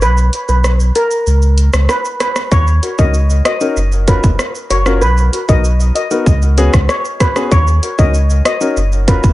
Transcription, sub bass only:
0.02 B1
0.49 B1
1.27 C#2
1.73 C#2
2.52 D#2
2.99 C#2
3.76 F#1
4.24 F#1
4.70 F#1
5.01 B1
5.49 B1
6.26 C#2
6.74 C#2
7.52 D#2
7.99 C#2
8.77 F#1
9.24 F#1

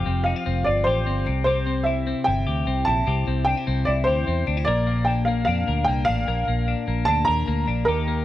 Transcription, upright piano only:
Already playing: G5
0.24 F5
0.64 D5
0.84 C5
1.44 C5
1.84 E5
2.24 G5
2.85 A5
3.45 G5
3.85 D5
4.04 C5
4.65 D5
5.05 G5
5.25 F5
5.45 F5
5.85 G5
6.05 F5
7.05 A5
7.25 A#5
7.85 A#4

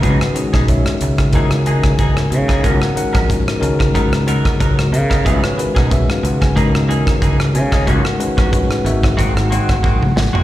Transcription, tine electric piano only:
0.00 D#3 G#3 C#4 F#4 B4
0.33 D#3 G#3 C#4 F#4 G#4
0.67 D#3 G#3 C#4 F#4 C#5 E5
1.31 D#3 G#3 C#4 F#4 A#4
1.67 G#5
2.62 D#3 G#3 C#4 F#4 A#4 F#5
2.95 D#3 G#3 C#4 F#4 A#4 F#5
3.28 D#3 G#3 C#4 F#4 A#4
3.59 D#3 G#3 C#4 F#4 A#4
4.79 F#4
4.93 A#4
5.10 D#5
5.23 D#3 G#3 C#4 F#4 B4 E5
5.44 C#5
5.57 D#3 G#3 C#4 F#4 A#4 B4
5.78 D#5
5.90 D#3 G#3 C#4 F#4 B4 E5
6.11 F5
6.26 F#5
6.42 G#5
6.55 D#3 G#3 C#4 F#4 A#4 A#5
6.75 D#5
7.56 G#5
7.86 D#3 G#3 C#4 F#4 A#4 F#5
8.19 D#3 G#3 C#4 F#4 B4
8.51 D#3 G#3 C#4 F#4 B4
8.84 D#3 G#3 A#3 C4 F#4 E5
9.20 F#5
9.52 F#5

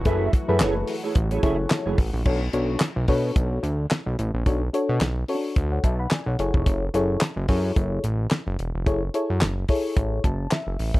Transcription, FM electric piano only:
0.05 E4 G#4 A4 B4
0.48 E4 G#4 A4 B4
1.43 E4 G#4 A4 C#5
2.25 D4 F#4 A4 C#5
2.53 D4 F#4 A4 C#5
3.08 D4 F#4 A4 C#5
4.46 D4 F#4 A4 C#5
4.73 D4 F#4 A4 C#5
5.28 C#4 F#4 A4 C#5
5.35 D4
5.72 C#5 F#5
5.84 E5 A5
5.99 F#5 B5
6.12 D5 G#5
6.27 C#5 F#5
6.39 E4 G#4 A4 C#5
6.94 E4 G#4 A4 C#5
7.49 E4 G#4 A4 C#5
8.86 E4 G#4 A4 C#5
9.14 E4 G#4 A4 C#5
9.69 E4 G#4 A4 C#5
10.25 A5
10.52 E5

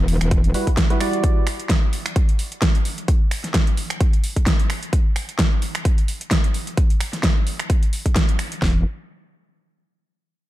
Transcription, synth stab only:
0.54 G3 E4 F#4 B4
0.90 G3 E4 F#4 B4
1.01 G3 E4 F#4 D5

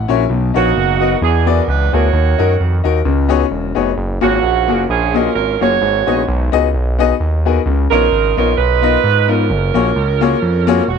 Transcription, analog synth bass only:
0.09 A#1
0.30 B1
0.56 A#1
0.77 F#1
1.21 E2
1.68 C#2
1.93 D2
2.13 D#2
2.40 F#2
2.60 F2
2.85 D#2
3.05 C#2
3.51 E1
3.77 F1
3.97 F#1
4.23 G#1
4.43 A#1
4.69 F#1
4.89 A#1
5.35 G#1
5.61 F#1
5.81 G#1
6.07 A#1
6.28 B1
6.53 C#2
6.74 B1
7.20 D#2
7.66 C#2
7.91 A#1
8.12 G#1
8.37 A#1
8.58 B1
9.04 G#2
9.50 F#1
9.75 A#1
9.96 C#2
10.42 F2
10.88 E1

